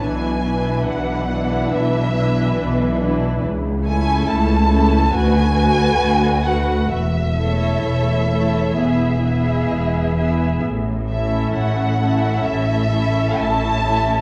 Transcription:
<<
  \new Staff \with { instrumentName = "Violin section" } { \time 4/4 \key a \major \tempo 4 = 67 gis''4 fis''4 e''4. r8 | r8 gis''8 a''4 gis''4. fis''8 | e''2. r4 | r8 e''8 fis''4 e''4 a''4 | }
  \new Staff \with { instrumentName = "Violin section" } { \time 4/4 \key a \major <e' b'>8 <e' b'>4 <e' b'>4 <e' b'>4 <e' b'>8 | r8 <e' a'>4 <e' a'>8 <fis' b'>8 <fis' b'>4 <fis' b'>8 | r8 <a' cis''>4 <a' cis''>8 <gis' e''>8 <gis' e''>4 <gis' e''>8 | r8 <a' e''>4 <a' e''>4 <a' e''>4 <a' e''>8 | }
  \new Staff \with { instrumentName = "Viola section" } { \time 4/4 \key a \major <e d'>8 <e d'>4 <e d'>4 <e d'>4 <e d'>8 | r8 <a cis'>4 <a cis'>8 <a fis'>8 <a fis'>4 <a fis'>8 | r8 <a e'>4 <a e'>8 <b e'>8 <b e'>4 <b e'>8 | r8 <cis' e'>4 <cis' e'>4 <cis' e'>4 <cis' e'>8 | }
  \new Staff \with { instrumentName = "Cello section" } { \clef bass \time 4/4 \key a \major b,4 b,4 b,4 b,4 | cis,4 cis,4 d,4 d,4 | e,4 e,4 e,4 e,4 | a,4 a,4 a,4 a,4 | }
  \new Staff \with { instrumentName = "Double bass section" } { \clef bass \time 4/4 \key a \major b,,4 b,,4 b,,4 b,,4 | cis,4 cis,4 d,4 d,4 | e,,4 e,,4 e,,4 e,,4 | a,,4 a,,4 a,,4 a,,4 | }
>>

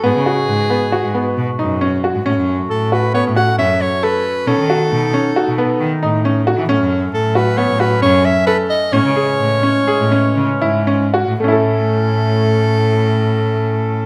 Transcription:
<<
  \new Staff \with { instrumentName = "Soprano saxophone" } { \time 5/4 \key a \lydian \tempo 4 = 135 gis'2. r2 | r4 a'8 b'8 cis''8 fis''8 e''8 cis''8 b'4 | a'2. r2 | r4 a'8 b'8 cis''8 b'8 cis''8 e''8 b'8 dis''8 |
cis''1 r4 | a'1~ a'4 | }
  \new Staff \with { instrumentName = "Grand piano" } { \time 5/4 \key a \lydian b8 fis'4 b8 fis'8 b4 dis'8 cis'8 fis'8 | cis'4 r8 fis'8 b8 fis'8 cis'4 a'4 | cis'8 fis'4 cis'8 fis'8 b4 dis'8 cis'8 fis'8 | cis'4 r8 fis'8 b8 fis'8 cis'4 a'4 |
cis'8 gis'4 cis'8 gis'8 cis'4 e'8 cis'8 fis'8 | <a cis' e' a'>1~ <a cis' e' a'>4 | }
  \new Staff \with { instrumentName = "Woodwind section" } { \time 5/4 \key a \lydian << { <fis' b'>1~ <fis' b'>4~ | <fis' b'>1~ <fis' b'>4 | dis'1~ dis'4 | cis'1~ cis'4 |
cis'1~ cis'4 | <a, a cis'>1~ <a, a cis'>4 | } \\ { gis1~ gis4 | <a cis'>1~ <a cis'>4 | <a b>1~ <a b>4 | fis1~ fis4 |
<e gis>1~ <e gis>4 | r1 r4 | } >> }
  \new Staff \with { instrumentName = "Cello" } { \clef bass \time 5/4 \key a \lydian gis,16 cis8 r16 gis,8 r8. gis,8 r16 b,16 r16 fis,4~ fis,16 gis,16 | a,16 fis,8. a,4~ a,16 a,8. fis,8 r4. | b,16 dis8 r16 b,8 r8. b,8 r16 dis16 r16 a,4~ a,16 e16 | a,16 fis,8. a,4~ a,16 a,8. fis,8 r4. |
a,16 cis8 r16 a,8 r8. a,8 r16 cis16 r16 gis,4~ gis,16 a,16 | a,1~ a,4 | }
>>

